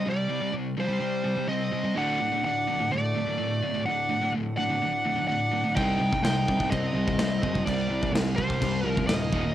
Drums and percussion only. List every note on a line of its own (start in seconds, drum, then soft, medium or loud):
5.76 kick loud
5.76 crash medium
6.13 kick medium
6.25 snare loud
6.25 crash medium
6.48 kick medium
6.60 kick medium
6.72 kick loud
6.72 crash medium
7.08 kick medium
7.19 snare loud
7.19 crash medium
7.43 kick medium
7.55 kick medium
7.67 kick medium
7.67 crash medium
8.03 kick medium
8.16 snare loud
8.16 crash medium
8.38 kick medium
8.50 kick medium
8.62 kick loud
8.62 crash medium
8.97 kick loud
9.09 snare loud
9.09 crash medium
9.33 kick loud